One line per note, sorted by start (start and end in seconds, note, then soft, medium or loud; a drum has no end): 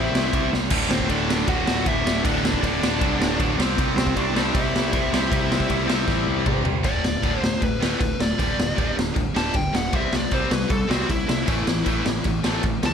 0.00 0.11 A1 loud
0.00 0.32 C3 medium
0.00 0.51 C3 medium
0.00 0.32 G3 loud
0.00 0.51 G3 medium
0.00 0.33 C4 loud
0.00 0.50 C4 loud
0.00 0.49 E4 medium
0.00 0.48 E5 medium
0.12 0.29 C2 medium
0.12 snare loud
0.33 0.50 C2 medium
0.33 0.51 C3 medium
0.33 0.51 G3 medium
0.33 0.52 C4 loud
0.33 kick loud
0.33 ride medium
0.52 0.69 C2 loud
0.52 0.70 C3 medium
0.52 0.70 G3 medium
0.52 0.71 C4 medium
0.52 snare medium
0.70 0.88 D1 medium
0.70 1.46 D2 medium
0.70 1.09 D2 loud
0.70 1.47 A2 medium
0.70 1.09 A2 medium
0.70 1.10 D3 loud
0.70 1.47 D3 loud
0.70 kick loud
0.70 crash loud
0.89 1.07 D1 medium
0.89 1.08 C4 medium
0.89 1.10 C5 medium
0.89 snare loud
1.00 kick medium
1.09 1.43 D1 medium
1.09 1.27 D2 medium
1.09 1.28 A2 medium
1.09 1.28 D3 medium
1.09 1.46 D4 medium
1.09 1.49 D5 medium
1.09 kick medium
1.09 ride medium
1.28 1.46 D2 loud
1.28 1.47 A2 medium
1.28 1.47 D3 loud
1.28 snare loud
1.47 1.64 D1 loud
1.47 2.22 D2 medium
1.47 1.84 D2 loud
1.47 2.23 A2 medium
1.47 1.85 A2 loud
1.47 1.86 D3 loud
1.47 2.24 D3 loud
1.47 1.83 F#4 medium
1.47 1.88 F#5 loud
1.47 kick loud
1.47 ride medium
1.67 1.84 D1 loud
1.67 snare loud
1.85 2.03 D1 loud
1.85 2.02 D2 medium
1.85 2.03 A2 loud
1.85 2.03 D3 medium
1.85 2.22 E4 medium
1.85 2.23 E5 loud
1.85 kick loud
1.85 ride medium
2.04 2.22 D1 medium
2.04 2.22 D2 medium
2.04 2.23 A2 medium
2.04 2.23 D3 medium
2.04 snare loud
2.23 2.58 D1 loud
2.23 2.99 D2 loud
2.23 2.61 D2 loud
2.23 2.62 A2 loud
2.23 3.00 A2 medium
2.23 2.62 D3 loud
2.23 3.00 D3 loud
2.23 2.60 D4 medium
2.23 2.63 D5 loud
2.23 kick loud
2.23 ride medium
2.45 snare loud
2.53 kick medium
2.62 2.80 D1 loud
2.62 2.80 D2 loud
2.62 2.80 A2 medium
2.62 2.81 D3 loud
2.62 3.54 D4 medium
2.62 3.56 D5 medium
2.62 kick medium
2.62 ride medium
2.81 2.99 D1 medium
2.81 2.99 D2 loud
2.81 3.00 A2 loud
2.81 3.00 D3 loud
2.81 snare loud
3.00 3.18 C2 medium
3.00 3.38 D2 medium
3.00 3.56 D2 medium
3.00 3.57 A2 medium
3.00 3.38 A2 loud
3.00 3.39 D3 loud
3.00 3.58 D3 medium
3.00 kick loud
3.00 ride medium
3.20 3.37 D1 loud
3.20 snare loud
3.39 3.56 D1 loud
3.39 3.57 D2 medium
3.39 3.57 A2 medium
3.39 3.58 D3 loud
3.39 kick loud
3.39 ride medium
3.57 3.75 C2 medium
3.57 4.37 C3 loud
3.57 3.77 C3 medium
3.57 3.78 G3 loud
3.57 4.36 G3 medium
3.57 3.78 C4 loud
3.57 4.35 C4 loud
3.57 snare loud
3.77 3.94 C2 loud
3.77 4.15 C3 loud
3.77 4.16 G3 loud
3.77 4.16 C4 loud
3.77 kick loud
3.77 ride medium
3.97 4.14 C2 medium
3.97 4.15 C4 medium
3.97 4.17 C5 medium
3.97 snare loud
4.07 kick medium
4.15 4.50 C2 loud
4.15 4.33 C3 loud
4.15 4.35 G3 loud
4.15 4.35 C4 loud
4.15 4.53 D4 medium
4.15 4.52 D5 medium
4.15 kick medium
4.15 ride medium
4.34 4.52 C3 medium
4.34 5.10 C3 medium
4.34 4.53 G3 loud
4.34 5.11 G3 medium
4.34 4.54 C4 medium
4.34 5.11 C4 medium
4.34 snare loud
4.53 4.71 C2 loud
4.53 4.91 C3 loud
4.53 4.91 G3 loud
4.53 4.92 C4 medium
4.53 6.43 E4 medium
4.53 5.77 E5 loud
4.53 kick loud
4.53 ride medium
4.75 4.91 C2 loud
4.75 snare loud
4.92 5.10 C2 loud
4.92 5.11 C3 medium
4.92 5.11 G3 medium
4.92 5.12 C4 loud
4.92 kick loud
4.92 ride medium
5.11 5.29 C2 medium
5.11 5.87 C3 medium
5.11 5.29 C3 medium
5.11 5.87 G3 loud
5.11 5.30 G3 medium
5.11 5.30 C4 medium
5.11 5.85 C4 loud
5.11 snare loud
5.30 5.65 C2 medium
5.30 5.68 C3 loud
5.30 5.68 G3 loud
5.30 5.69 C4 loud
5.30 kick loud
5.30 ride medium
5.52 snare loud
5.60 kick loud
5.69 5.87 C2 medium
5.69 5.86 C3 loud
5.69 5.88 G3 loud
5.69 5.88 C4 loud
5.69 kick medium
5.69 ride medium
5.77 6.42 D5 loud
5.87 6.06 C2 medium
5.87 6.05 C3 medium
5.87 6.65 C3 medium
5.87 6.64 G3 medium
5.87 6.06 G3 medium
5.87 6.63 C4 medium
5.87 6.07 C4 loud
5.87 snare loud
6.07 6.25 A1 medium
6.07 6.44 C3 medium
6.07 6.44 G3 loud
6.07 6.45 C4 loud
6.07 kick loud
6.07 snare medium
6.28 6.44 C2 medium
6.45 6.63 C2 medium
6.45 6.62 C3 medium
6.45 6.63 G3 medium
6.45 6.64 C4 loud
6.45 kick loud
6.45 mid tom loud
6.64 6.82 C2 medium
6.64 6.83 C3 medium
6.64 6.83 G3 medium
6.64 6.83 C4 medium
6.64 floor tom loud
6.83 6.98 D1 loud
6.83 7.02 D2 medium
6.83 7.02 A2 medium
6.83 7.03 D3 loud
6.83 7.38 D5 medium
6.83 kick loud
6.83 crash medium
7.04 7.18 D1 medium
7.04 7.21 D2 medium
7.04 7.21 A2 medium
7.04 snare loud
7.22 7.37 D1 medium
7.22 7.41 D2 medium
7.22 7.41 A2 medium
7.22 7.41 D3 medium
7.22 kick loud
7.22 crash medium
7.38 7.55 D1 medium
7.38 7.60 D2 medium
7.38 7.59 A2 medium
7.38 7.60 C5 medium
7.44 snare loud
7.61 7.75 D1 loud
7.61 7.79 D2 medium
7.61 7.79 A2 medium
7.61 7.82 B4 medium
7.61 kick loud
7.61 crash medium
7.80 7.94 D1 medium
7.80 7.98 D2 medium
7.80 7.99 A2 medium
7.80 7.99 D3 medium
7.80 7.98 B4 medium
7.80 snare loud
8.00 8.14 D1 medium
8.00 8.17 D2 medium
8.00 8.17 A2 loud
8.00 8.19 B4 medium
8.00 kick loud
8.00 crash medium
8.19 8.33 D1 medium
8.19 8.37 D2 medium
8.19 8.37 A2 medium
8.19 8.95 D5 medium
8.19 snare loud
8.38 8.53 D1 medium
8.38 8.56 G2 medium
8.38 8.57 D3 medium
8.38 8.57 G3 loud
8.38 kick loud
8.38 crash medium
8.58 8.72 D1 medium
8.58 8.74 G2 medium
8.58 8.75 D3 medium
8.58 snare loud
8.75 8.91 D1 medium
8.75 8.94 G2 medium
8.75 8.95 D3 medium
8.75 8.95 G3 loud
8.75 kick loud
8.75 crash medium
8.95 9.10 D1 medium
8.95 9.13 G2 medium
8.95 9.13 D3 medium
8.95 snare loud
9.15 9.29 D1 medium
9.15 9.33 G2 medium
9.15 9.33 D3 medium
9.15 kick loud
9.15 crash medium
9.35 9.49 D1 medium
9.35 9.53 G2 medium
9.35 9.53 D3 medium
9.35 9.53 G3 loud
9.35 9.56 A5 loud
9.35 snare loud
9.54 9.68 D1 medium
9.54 9.71 G2 medium
9.54 9.72 D3 medium
9.54 9.74 G5 medium
9.54 kick loud
9.54 crash medium
9.73 9.88 D1 medium
9.73 9.91 G2 medium
9.73 9.91 D3 medium
9.73 9.94 F#5 loud
9.73 snare loud
9.92 10.07 C2 loud
9.92 10.11 C3 loud
9.92 10.11 G3 medium
9.92 10.11 C4 loud
9.92 10.13 E5 loud
9.92 kick loud
9.92 crash medium
10.13 10.26 C2 medium
10.13 10.30 C3 medium
10.13 10.31 G3 medium
10.13 10.34 D5 medium
10.13 snare loud
10.31 10.45 C2 loud
10.31 10.49 C3 medium
10.31 10.49 G3 loud
10.31 10.50 C4 loud
10.31 10.52 C5 medium
10.31 kick loud
10.31 crash medium
10.50 10.64 C2 medium
10.50 10.68 C3 medium
10.50 10.67 G3 medium
10.50 10.71 B4 medium
10.50 snare loud
10.69 10.84 C2 loud
10.69 10.87 C3 medium
10.69 10.87 G3 loud
10.69 10.90 A4 medium
10.69 kick loud
10.69 crash medium
10.88 11.03 C2 loud
10.88 11.07 C3 medium
10.88 11.07 G3 loud
10.88 11.07 C4 loud
10.88 11.09 F#4 medium
10.88 snare loud
11.08 11.23 C2 loud
11.08 11.26 C3 medium
11.08 11.26 G3 loud
11.08 11.28 E4 medium
11.08 kick loud
11.08 crash medium
11.27 11.42 C2 medium
11.27 11.45 C3 medium
11.27 11.45 G3 medium
11.27 12.04 E4 loud
11.27 snare loud
11.46 11.61 A1 loud
11.46 11.65 A2 medium
11.46 11.66 E3 medium
11.46 11.65 A3 medium
11.46 kick loud
11.46 crash medium
11.66 11.81 A1 medium
11.66 11.83 A2 medium
11.66 11.84 E3 medium
11.66 snare loud
11.84 12.00 A1 medium
11.84 12.03 A2 medium
11.84 12.04 E3 medium
11.84 12.04 A3 loud
11.84 kick loud
11.84 crash medium
12.04 12.20 A1 medium
12.04 12.22 A2 medium
12.04 12.22 E3 medium
12.04 snare loud
12.23 12.39 A1 medium
12.23 12.41 A2 medium
12.23 12.42 E3 medium
12.23 kick loud
12.23 crash medium
12.44 12.59 A1 medium
12.44 12.61 A2 medium
12.44 12.61 E3 medium
12.44 12.63 A3 loud
12.44 snare loud
12.62 12.77 A1 medium
12.62 12.81 A2 medium
12.62 12.81 E3 medium
12.62 kick loud
12.62 crash medium
12.83 12.94 C#2 medium
12.83 12.94 A2 medium
12.83 12.94 E3 medium
12.83 12.94 A5 loud
12.83 snare loud